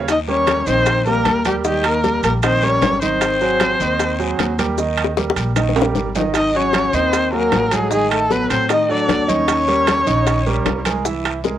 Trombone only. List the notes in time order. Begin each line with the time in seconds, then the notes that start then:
0.10 D#4
0.30 C#4
0.69 C4
1.08 A#3
1.46 G3
1.66 G3
1.86 A#3
2.25 A#3
2.43 C4
2.64 C#4
3.03 C4
6.36 D#4
6.55 C#4
6.95 C4
7.34 A#3
7.73 G#3
7.93 G#3
8.12 A3
8.32 B3
8.51 C4
8.71 D#4
8.90 D4
9.29 C#4